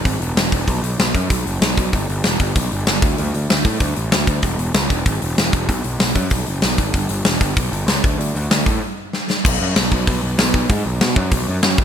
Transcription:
0.05 G#1, kick, open hi-hat
0.21 E1, open hi-hat
0.35 E1, snare, open hi-hat
0.52 E1, kick, open hi-hat
0.68 B1, kick, open hi-hat
0.83 B1, open hi-hat
0.99 B1, snare, open hi-hat
1.15 F#2, kick, open hi-hat
1.30 B1, kick, open hi-hat
1.46 F#1, open hi-hat
1.61 B1, snare, open hi-hat
1.77 B1, kick, open hi-hat
1.93 G1, kick, open hi-hat
2.09 G1, open hi-hat
2.24 E1, snare, open hi-hat
2.40 G1, kick, open hi-hat
2.55 B1, kick, open hi-hat
2.72 G1, open hi-hat
2.87 G1, snare, open hi-hat
3.02 D2, kick, open hi-hat
3.18 D2, open hi-hat
3.34 D2, open hi-hat
3.50 D2, snare, open hi-hat
3.65 A2, kick, open hi-hat
3.80 D2, kick, open hi-hat
3.96 A1, open hi-hat
4.12 D2, snare, open hi-hat
4.27 D2, kick, open hi-hat
4.42 E1, kick, open hi-hat
4.58 E1, open hi-hat
4.74 C#2, snare, open hi-hat
4.90 E1, kick, open hi-hat
5.06 G#1, kick, open hi-hat
5.22 E1, open hi-hat
5.38 E1, snare, open hi-hat
5.53 E1, kick, open hi-hat
5.69 B1, kick, open hi-hat
5.84 B1, open hi-hat
5.99 B1, snare, open hi-hat
6.15 F#2, kick, open hi-hat
6.30 B1, kick, open hi-hat
6.46 F#1, open hi-hat
6.62 B1, snare, open hi-hat
6.78 G#1, kick, open hi-hat
6.94 G1, kick, open hi-hat
7.09 G1, open hi-hat
7.25 E1, snare, open hi-hat
7.41 G1, kick, open hi-hat
7.57 B1, kick, open hi-hat
7.71 G1, open hi-hat
7.87 C#2, snare, open hi-hat
8.04 D2, kick, open hi-hat
8.18 D2, open hi-hat
8.35 D2, open hi-hat
8.51 D2, snare, open hi-hat
8.66 A2, kick, open hi-hat
9.13 snare
9.30 snare
9.45 B1, kick, crash
9.61 F#2
9.76 B1, snare, open hi-hat
9.92 B1, kick
10.07 B1, kick, open hi-hat
10.22 B1
10.38 B1, snare, open hi-hat
10.54 kick
10.70 G#2, kick, open hi-hat
10.86 B1
11.01 B2, snare, open hi-hat
11.16 F#2, kick
11.31 B1, kick, open hi-hat
11.48 F#2
11.63 F#2, snare, open hi-hat
11.78 E1, kick

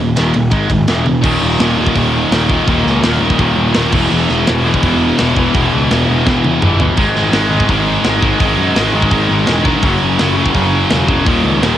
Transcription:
0.00 D#1 D#2 A#2
0.16 D#1 D#2 A#2 D#3, snare, ride
0.34 D#1 D#2 A#2, ride
0.51 G#1 G#2 D#3 G#3, kick, ride
0.69 D#1 G#2 D#3, kick, ride
0.88 E1 E2 B2 E3, snare, ride
1.05 E2 B2, high tom
1.23 D#1 D#2 A#2 D#3, kick, crash
1.43 D#1
1.59 D#1 D#2 A#2 D#3, snare, open hi-hat
1.78 D#2 A#2 D#3
1.87 kick
1.95 D#1 D#2 A#2 D#3, kick, open hi-hat
2.30 D#1 D#2 A#2 D#3, snare, open hi-hat
2.48 D#2 A#2 D#3, kick
2.52 D#2
2.68 D#1 D#2 A#2 D#3, kick, open hi-hat
2.86 C#2, snare
3.03 D#1 D#2 A#2 D#3, snare, open hi-hat
3.13 snare
3.20 D#1 D#2 A#2 D#3
3.30 kick
3.38 D#1 D#2 A#2 D#3, kick, open hi-hat
3.56 D#1
3.74 D#1 D#2 A#2 D#3, snare, open hi-hat
3.92 E1 E2 B2 E3, kick, crash
4.11 E1 E2 B2 E3
4.29 E1, snare
4.47 E1 E2 B2 E3, snare, open hi-hat
4.56 snare
4.66 E2 B2 E3
4.74 kick
4.82 E1 E2 B2 E3, kick, open hi-hat
5.18 E1 E2 B2 E3, snare, open hi-hat
5.36 E2 B2 E3, kick
5.54 E1 E2 B2 E3, kick, open hi-hat
5.74 C#2
5.90 E1 E2 B2 E3, snare, open hi-hat
6.08 E1 E2 B2 E3
6.26 E1 E2 B2 E3, kick, snare
6.44 E1, high tom
6.62 G1 E2 B2 E3, mid tom
6.80 E2 B2 E3, floor tom
6.97 G#1 G#2 D#3 G#3, kick, crash
7.15 G#1, snare
7.32 G#1 G#2 D#3 G#3, snare, open hi-hat
7.50 G#2 D#3 G#3
7.60 kick
7.69 G#1 G#2 D#3 G#3, kick, open hi-hat
8.04 G#1 G#2 D#3 G#3, snare, open hi-hat
8.21 G#2 D#3 G#3, kick
8.40 G#1 G#2 D#3 G#3, kick, open hi-hat
8.58 F#2
8.75 G#1 G#2 D#3 G#3, snare, open hi-hat
8.94 G#1 G#2 D#3 G#3
9.02 kick
9.11 G#1 G#2 D#3 G#3, kick, open hi-hat
9.29 G#1
9.47 E1 G#2 D#3 G#3, snare, open hi-hat
9.65 G#2 D#3 G#3, kick
9.82 F#1 F#2 C#3 F#3, kick, open hi-hat
10.02 F#1
10.19 F#1 F#2 C#3 F#3, snare, open hi-hat
10.37 F#2 C#3 F#3
10.46 kick
10.54 F#1 F#2 C#3 F#3, kick, open hi-hat
10.90 E1 F#2 C#3 F#3, snare, open hi-hat
11.08 F#2 C#3 F#3, kick
11.26 D#1 D#2 A#2 D#3, kick, open hi-hat
11.43 C#2
11.61 D#1 D#2 A#2 D#3, snare, open hi-hat

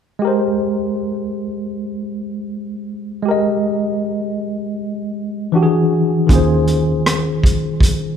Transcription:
0.19 G#3 G4
0.25 A#4 C5
3.22 G#3 G4
3.29 A#4 D#5
5.52 E3 D4 F#4
5.56 G4
5.63 G#4
6.27 D#2 D#3 C#4, kick, closed hi-hat
6.31 F4 G#4
6.35 C5
6.68 closed hi-hat
7.06 cross-stick, closed hi-hat
7.44 kick, closed hi-hat
7.80 kick, closed hi-hat

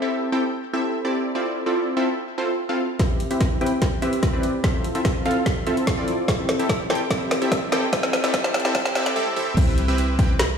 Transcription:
0.02 C4 E4 G4 A4 E5
0.32 C4 E4 G4 A4 G5
0.73 C4 E4 G4 A4 E5
1.05 C4 E4 G4 A4 D5
1.35 C4 E4 F4 A4 D5
1.66 C4 E4 F4 A4 D5
1.97 C4 E4 F4 A4 E5
2.38 C4 E4 F4 A4 C5
2.69 C4 E4 F4 A4 F5
2.99 C4 E4 G4 B4 E5, kick, snare, closed hi-hat
3.20 closed hi-hat
3.31 C4 E4 G4 B4 E5, closed hi-hat
3.41 kick, snare, closed hi-hat
3.61 C4 E4 G4 B4 G5, closed hi-hat
3.66 closed hi-hat
3.82 kick, snare, closed hi-hat
4.02 C4 E4 G4 B4 E5, closed hi-hat
4.13 closed hi-hat
4.23 kick, snare, closed hi-hat
4.33 C4 E4 G4 B4 D5
4.43 closed hi-hat
4.64 C4 E4 F4 A4 E5, kick, snare, closed hi-hat
4.84 closed hi-hat
4.95 C4 E4 F4 A4 E5, closed hi-hat
5.05 kick, snare, closed hi-hat
5.26 C4 E4 F4 A4 F5, closed hi-hat
5.31 closed hi-hat
5.46 kick, snare, closed hi-hat
5.67 C4 E4 F4 A4 E5, closed hi-hat
5.77 closed hi-hat
5.87 kick, snare, closed hi-hat
5.98 C4 E4 F4 A4 D5
6.08 closed hi-hat
6.28 C4 E4 G4 A4 E5, kick, snare, closed hi-hat
6.49 snare, closed hi-hat
6.59 C4 E4 G4 A4 E5, closed hi-hat
6.69 kick, snare, closed hi-hat
6.90 C4 E4 G4 A4 G5, snare, closed hi-hat
6.95 closed hi-hat
7.10 C4 E4 G4 A4 E5, kick, snare, closed hi-hat
7.31 snare, closed hi-hat
7.42 C4 E4 G4 A4 E5, closed hi-hat
7.52 kick, snare, closed hi-hat
7.72 C4 E4 G4 A4 G5, snare, closed hi-hat
7.93 C4 E4 G4 A4 E5, kick, snare, closed hi-hat
8.03 snare
8.13 snare, closed hi-hat
8.24 C4 E4 G4 A4 E5, snare, closed hi-hat
8.34 C4 E4 G4 A4 E5, kick, snare, closed hi-hat
8.44 snare
8.54 snare, closed hi-hat
8.60 closed hi-hat
8.65 C4 E4 G4 A4 E5, snare
8.75 C4 E4 A4 E5, kick, snare, closed hi-hat
8.85 snare
8.95 C4 E4 G4 A4 E5, snare, closed hi-hat
9.06 snare, closed hi-hat
9.16 C4 E4 G4 A4 E5, high tom
9.27 high tom
9.36 C4 E4 G4 A4 E5, mid tom
9.47 mid tom
9.57 C2 C4 E4 G4 B4 E5, kick, closed hi-hat, crash
9.78 closed hi-hat
9.88 C4 E4 G4 B4 E5
9.98 closed hi-hat
10.19 C4 E4 G4 B4 G5, kick, closed hi-hat
10.39 snare, closed hi-hat

